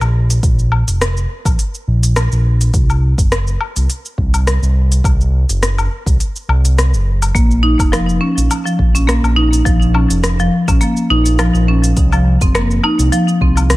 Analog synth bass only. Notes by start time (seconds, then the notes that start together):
0.01 A#1
0.43 A#1
0.88 F1
1.45 A#1
1.88 A#1
2.32 A#1
2.74 C2
3.18 F#1
3.76 C2
4.18 C2
4.62 C2
5.04 C2
5.49 F#1
6.06 C2
6.49 C2
6.93 F#1
7.35 A#1
7.79 F1
8.37 A#1
8.79 A#1
9.23 A#1
9.66 A#1
10.10 F1
10.68 A#1
11.10 A#1
11.54 A#1
11.97 C2
12.41 F#1
12.99 C2
13.41 C2